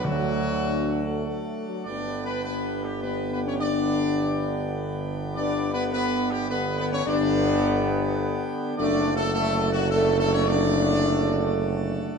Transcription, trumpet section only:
\new Staff \with { instrumentName = "Trumpet section" } { \time 3/4 \key g \lydian \tempo 4 = 104 fis'2~ fis'8 r8 | \tuplet 3/2 { d''4 b'8 b'4 g'8 } b'8 b'16 cis''16 | d''2~ d''8 r8 | \tuplet 3/2 { d''4 b'8 b'4 g'8 } b'8 b'16 cis''16 |
d''2~ d''8 r8 | \tuplet 3/2 { d''4 a'8 a'4 fis'8 } a'8 a'16 cis''16 | d''2~ d''8 r8 | }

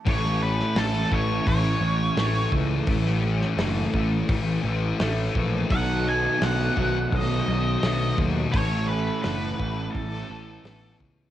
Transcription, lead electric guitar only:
\new Staff \with { instrumentName = "Lead electric guitar" } { \time 4/4 \key a \lydian \tempo 4 = 85 cis''8 b'8 a'8 cis''8 cis''4. r8 | r1 | fis''8 gis''8 fis''4 dis''4. r8 | cis''8 b'8 b'4 a'4. r8 | }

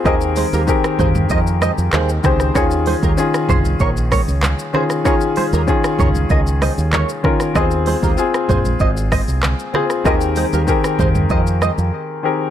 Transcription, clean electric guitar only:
\new Staff \with { instrumentName = "Clean electric guitar" } { \time 4/4 \key ees \mixolydian \tempo 4 = 96 <c'' ees''>16 r16 <aes' c''>16 <g' bes'>16 r8 <aes' c''>16 r16 <c'' ees''>16 r16 <c'' ees''>16 r16 <aes' c''>8 r8 | <bes' des''>16 r16 <aes' c''>16 <g' bes'>16 r8 <aes' c''>16 r16 <bes' des''>16 r16 <bes' des''>16 r8. <aes' c''>16 r16 | <bes' des''>16 r16 <aes' c''>16 <g' bes'>16 r8 <bes' des''>16 r16 <bes' ees''>16 r16 <c'' ees''>16 r16 <bes' des''>8 r8 | <c'' ees''>16 r16 <aes' c''>16 <g' bes'>16 r8 <aes' c''>16 r16 <c'' ees''>16 r16 <c'' ees''>16 r8. <aes' c''>16 r16 |
<c'' ees''>16 r16 <aes' c''>16 <g' bes'>16 r8 <aes' c''>16 r16 <c'' ees''>16 r16 <c'' ees''>16 r4 r16 | }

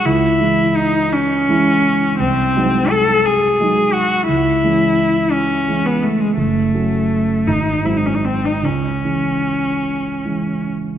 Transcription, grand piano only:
\new Staff \with { instrumentName = "Grand piano" } { \clef bass \time 6/8 \key cis \minor \tempo 4. = 56 cis,8 <e gis e'>4. <e gis e'>4 | bis,,8 <fis gis dis'>4. <fis gis dis'>4 | cis,8 <e gis cis'>4. <e gis cis'>4 | fis,,8 <fis a cis'>4 gis,,8 <fis gis bis>4 |
cis,8 <e gis cis'>4. <e gis cis'>4 | }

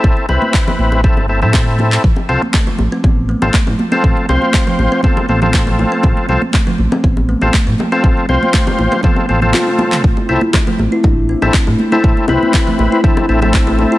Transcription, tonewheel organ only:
\new Staff \with { instrumentName = "Tonewheel organ" } { \time 4/4 \key f \lydian \tempo 4 = 120 <c' e' a'>8 <c' e' b'>4. <c' e' a'>8 <c' e' a'>16 <c' e' a'>4~ <c' e' a'>16 | r8 <c' f' a'>16 r2 <c' f' a'>16 r8. <c' f' a'>16~ | <c' f' a'>8 <c' f' c''>4. <c' f' a'>8 <c' f' a'>16 <c' f' a'>4~ <c' f' a'>16~ | <c' f' a'>8 <c' f' a'>16 r2 <c' f' a'>16 r8. <c' f' a'>16~ |
<c' f' a'>8 <c' f' c''>4. <c' f' a'>8 <c' f' a'>16 <c' f' a'>4~ <c' f' a'>16 | r8 <c' e' a'>16 r2 <c' e' a'>16 r8. <c' e' a'>16~ | <c' e' a'>8 <c' e' b'>4. <c' e' a'>8 <c' e' a'>16 <c' e' a'>4~ <c' e' a'>16 | }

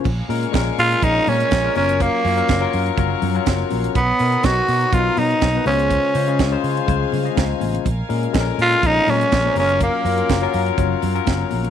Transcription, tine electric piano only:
\new Staff \with { instrumentName = "Tine electric piano" } { \time 4/4 \key bes \minor \tempo 4 = 123 << { r1 | r2. f''4 | r1 | r2. bes''8 aes''8~ |
aes''8 r2. r8 | r1 | } \\ { r8 <bes, aes des' bes'>8 <bes, aes des' bes'>4 <bes, aes c' des' bes'>4 r16 <bes, aes des' bes'>16 <ges des' f' bes'>8~ | <ges des' f' bes'>8 <ges des' f' des''>16 <ges des' f' bes'>8 <ges des' f' bes'>8. <ges des' f' bes'>8. <ges des' f' bes'>4~ <ges des' f' bes'>16 | r8 <b, b dis' ais'>8 <b, b dis' fis'>4 <b, b dis' ais'>4 r16 <b, b dis' b'>16 <des aes e' f' c''>8~ | <des aes e' f' c''>8 <des aes f' c''>16 <des aes f' aes'>8 <des aes f' c''>8. <des aes f' c''>8. <des aes f' ees''>4~ <des aes f' ees''>16 |
r8 <bes, aes des' bes'>8 <bes, aes des' a' bes'>4 <bes, aes c' des' bes'>4 r16 <bes, aes des' c''>16 <ges des' f' bes'>8~ | <ges des' f' bes'>8 <ges des' f' bes'>16 <ges des' f' bes'>8 <ges des' f' bes'>8. <ges des' f' des''>8. <ges des' f' bes'>4~ <ges des' f' bes'>16 | } >> }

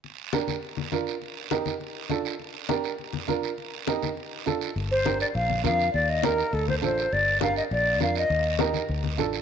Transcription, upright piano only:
\new Staff \with { instrumentName = "Upright piano" } { \time 4/4 \key g \minor \tempo 4 = 203 r4 <d' g' bes'>8 r4. <d' f' bes'>8 r8 | r4 <ees' g' bes'>8 r4. <d' f' a'>8 r8 | r4 <d' g' bes'>8 r4. <d' f' bes'>8 r8 | r4 <ees' g' bes'>8 r4. <d' f' a'>8 r8 |
r4 <d' g' bes'>8 r4. <d' f' bes'>8 r8 | r4 <ees' g' bes'>8 r4. <d' f' a'>8 r8 | r4 <d' g' bes'>8 r4. <d' f' bes'>8 r8 | r4 <ees' g' bes'>8 r4. <d' f' a'>8 r8 | }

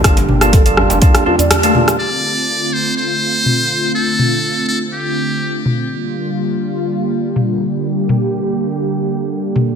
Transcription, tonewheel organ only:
\new Staff \with { instrumentName = "Tonewheel organ" } { \time 4/4 \key d \minor \tempo 4 = 123 <g bes d' f' a'>16 r8 <g bes d' f' a'>8 <g bes d' f' a'>8. <g bes d' f' a'>8 <g bes d' f' a'>16 r8 <g bes d' f' a'>8. | r1 | r1 | r1 |
r1 | }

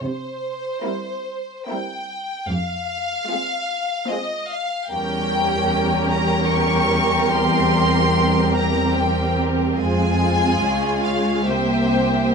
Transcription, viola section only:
\new Staff \with { instrumentName = "Viola section" } { \time 3/4 \key c \phrygian \tempo 4 = 74 << { r4 c'4 c'4 | r4 c'4 c'4 | cis'2. | c'2.~ |
c'4 des'4 c'4 | } \\ { r4 g4 g4 | r4 aes4 aes4 | g2.~ | g2. |
aes2 bes4 | } >> }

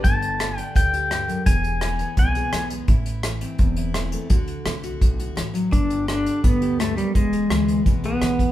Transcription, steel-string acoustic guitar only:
\new Staff \with { instrumentName = "Steel-string acoustic guitar" } { \clef bass \time 4/4 \key g \major \tempo 4 = 169 << { g'4. d'4 g'4. | gis'4. b4 gis'4 gis8 | e'4. c'4 e'4 a8 | fis'4. fis'4 fis'4. |
d'8 g'4 d'8 b8 g'4. | b8 gis'4 b8 gis8 gis'4 b8 | } \\ { <g, d>4 d4 g,4 g,8 fis,8 | e,4 e4 b,4 e4 | a,4 e4 e,4 e4 | d4 a4 a,4 e8 fis8 |
g,4 d4 g,4 g,8 fis,8 | e,4 e4 b,4 e4 | } >> }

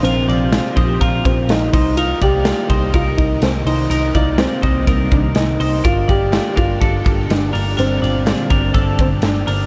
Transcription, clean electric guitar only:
\new Staff \with { instrumentName = "Clean electric guitar" } { \time 4/4 \key c \dorian \tempo 4 = 124 <f' bes'>8 <f' d''>4 <ees' c''>8 <f' bes'>4. <ees' c''>8 | <ees' bes'>8 <f' d''>4 <ees' c''>8 <ees' bes'>4. <ees' c''>8 | <ees' bes'>8 <f' d''>4 <ees' c''>8 <ees' bes'>4. <ees' c''>8 | <d' bes'>8 <f' d''>4 <d' bes'>8 <d' a'>4. <d' bes'>8 |
<d' bes'>8 <f' d''>4 <d' bes'>8 <d' a'>4. <d' bes'>8 | }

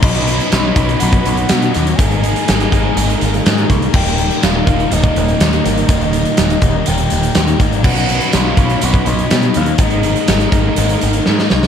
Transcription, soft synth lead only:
\new Staff \with { instrumentName = "Soft synth lead" } { \time 4/4 \key ees \major \tempo 4 = 123 dis''4 dis''4 fis''2 | aes''2.~ aes''8 r8 | g''4 f''4 ees''2 | ees''2 g''4. r8 |
fis''4 f''4 fis''8 dis''4 f''8 | ees''2. r8 ees''8 | }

